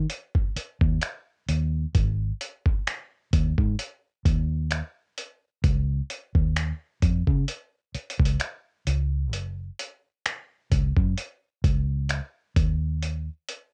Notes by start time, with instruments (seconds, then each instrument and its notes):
0.10 closed hi-hat
0.35 kick
0.56 muted fingered electric bass stroke, closed hi-hat
0.81 fingered electric bass D#2, kick
1.01 finger snap, closed hi-hat
1.49 fingered electric bass D#2, closed hi-hat
1.95 fingered electric bass G#1, kick, closed hi-hat
2.41 closed hi-hat
2.66 kick
2.87 finger snap, closed hi-hat
3.33 fingered electric bass D#2, kick, closed hi-hat
3.58 fingered electric bass G#2, kick
3.79 closed hi-hat
4.25 fingered electric bass D#2, kick, closed hi-hat
4.71 finger snap, closed hi-hat
5.18 closed hi-hat
5.64 fingered electric bass C#2, kick, closed hi-hat
6.10 closed hi-hat
6.35 fingered electric bass D#2, kick
6.56 finger snap, closed hi-hat
7.02 fingered electric bass F2, kick, closed hi-hat
7.27 fingered electric bass C#3, kick
7.48 closed hi-hat
7.95 muted fingered electric bass stroke, closed hi-hat
8.10 closed hi-hat
8.20 fingered electric bass C#2, kick
8.25 closed hi-hat
8.40 finger snap, closed hi-hat
8.87 fingered electric bass C#2, closed hi-hat
9.33 fingered electric bass F#1, closed hi-hat
9.79 closed hi-hat
10.26 finger snap, closed hi-hat
10.72 fingered electric bass C#2, kick, closed hi-hat
10.97 fingered electric bass F#2, kick
11.18 closed hi-hat
11.64 fingered electric bass C#2, kick, closed hi-hat
12.09 finger snap, closed hi-hat
12.56 fingered electric bass D#2, kick, closed hi-hat
13.02 closed hi-hat
13.49 closed hi-hat